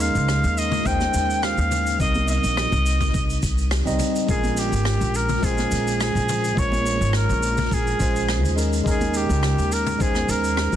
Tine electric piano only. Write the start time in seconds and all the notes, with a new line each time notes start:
Already playing: G#3 C#4 D#4 A#4
0.85 G#3 C#4 D#4 C5
1.98 G3 C4 D#4 A#4
3.85 G3 C4 D#4 D#5
4.26 G#3 C#4 F4
4.30 A#4
5.42 G#3 C#4 F4 C5
6.55 G#3 C#4 F4 A#4
7.99 G#3 C#4 F4 C5
8.56 G#3 C#4 D#4 A#4
8.84 G#3 C#4 D#4 A#4
9.99 G#3 C#4 D#4 C5